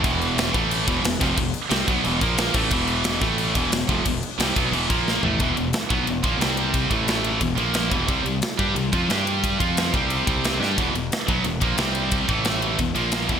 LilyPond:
<<
  \new Staff \with { instrumentName = "Distorted electric guitar" } { \clef bass \time 4/4 \key e \phrygian \tempo 4 = 179 <e, b, e>4. <a, e a>4 <e, b, e>8 <e, b,>8 <f, c f>8 | <e, b,>8 r8 <c g c'>8 <b, fis b>8 <e, b, e>8 <ais, eis ais>4 <a, e a>8 | <e, b, e>4. <a, e a>4 <e, b, e>8 <e, b,>8 <f, c f>8 | <e, b,>8 r8 <c g c'>8 <b, fis b>8 <e, b, e>8 <ais, eis ais>4 <a, e a>8 |
<e, b, e>8 <e, b,>8 r8 <b, fis b>8 <e, b,>8 <ais, f ais>8 <c g c'>4~ | <c g c'>8 <a, e a>4. <e, b,>8 <ais, eis ais>4 <e, b, e>8 | <c g c'>8 <c g>8 r8 <g d' g'>8 <c g>8 <f c' f'>8 <g d' g'>4~ | <g d' g'>8 <f c' f'>4 <c g c'>4 <c g c'>4 <g d' g'>8 |
<e, b, e>8 <e, b,>8 r8 <b, fis b>8 <e, b,>8 <ais, f ais>8 <c g c'>4~ | <c g c'>8 <a, e a>4. <e, b,>8 <ais, eis ais>4 <e, b, e>8 | }
  \new Staff \with { instrumentName = "Distorted electric guitar" } { \clef bass \time 4/4 \key e \phrygian <e, b, e>4. <a, e a>4 <e, b, e>8 <e, b,>8 <f, c f>8 | <e, b,>8 r8 <c g c'>8 <b, fis b>8 <e, b, e>8 <ais, eis ais>4 <a, e a>8 | <e, b, e>4. <a, e a>4 <e, b, e>8 <e, b,>8 <f, c f>8 | <e, b,>8 r8 <c g c'>8 <b, fis b>8 <e, b, e>8 <ais, eis ais>4 <a, e a>8 |
<e, b, e>8 <e, b,>8 r8 <b, fis b>8 <e, b,>8 <ais, f ais>8 <c g c'>4~ | <c g c'>8 <a, e a>4. <e, b,>8 <ais, eis ais>4 <e, b, e>8 | <c g c'>8 <c g>8 r8 <g d' g'>8 <c g>8 <f c' f'>8 <g d' g'>4~ | <g d' g'>8 <f c' f'>4 <c g c'>4 <c g c'>4 <g d' g'>8 |
<e, b, e>8 <e, b,>8 r8 <b, fis b>8 <e, b,>8 <ais, f ais>8 <c g c'>4~ | <c g c'>8 <a, e a>4. <e, b,>8 <ais, eis ais>4 <e, b, e>8 | }
  \new Staff \with { instrumentName = "Fingered electric bass" } { \clef bass \time 4/4 \key e \phrygian e,,4. a,,4 e,,8 e,,8 f,,8 | e,,8 r8 c,8 b,,8 e,,8 ais,,4 a,,8 | e,,4. a,,4 e,,8 e,,8 f,,8 | e,,8 r8 c,8 b,,8 e,,8 ais,,4 a,,8 |
e,,8 e,,8 r8 b,,8 e,,8 ais,,8 c,4~ | c,8 a,,4. e,,8 ais,,4 e,,8 | c,8 c,8 r8 g,8 c,8 f,8 g,4~ | g,8 f,4 c,4 c,4 g,8 |
e,,8 e,,8 r8 b,,8 e,,8 ais,,8 c,4~ | c,8 a,,4. e,,8 ais,,4 e,,8 | }
  \new DrumStaff \with { instrumentName = "Drums" } \drummode { \time 4/4 <cymc bd>8 cymc8 <cymc sn>8 <cymc bd>8 cymc8 <cymc bd>8 <cymc sn>8 <cymc bd sn>8 | <cymc bd>8 cymc8 <cymc sn>8 <cymc bd>8 cymc8 <cymc bd>8 <cymc sn>8 <cymc bd>8 | <cymc bd>8 cymc8 <cymc sn>8 <cymc bd sn>8 cymc8 <cymc bd>8 <cymc sn>8 <cymc bd>8 | <cymc bd>8 cymc8 <cymc sn>8 <cymc bd>8 cymc8 <cymc bd>8 sn8 tomfh8 |
<bd cymr>8 cymr8 <cymr sn>8 <bd cymr>8 cymr8 <bd cymr>8 <cymr sn>8 cymr8 | <bd cymr>8 <bd cymr>8 <cymr sn>8 cymr8 <bd cymr>8 cymr8 <cymr sn>8 <bd cymr>8 | <bd cymr>8 cymr8 <cymr sn>8 <bd cymr>8 cymr8 <bd cymr>8 <cymr sn>8 cymr8 | <bd cymr>8 <bd cymr>8 <cymr sn>8 <bd cymr>8 cymr8 <bd cymr>8 <cymr sn>8 sn8 |
<bd cymr>8 cymr8 <cymr sn>8 <bd cymr>8 cymr8 <bd cymr>8 <cymr sn>8 cymr8 | <bd cymr>8 <bd cymr>8 <cymr sn>8 cymr8 <bd cymr>8 cymr8 <cymr sn>8 <bd cymr>8 | }
>>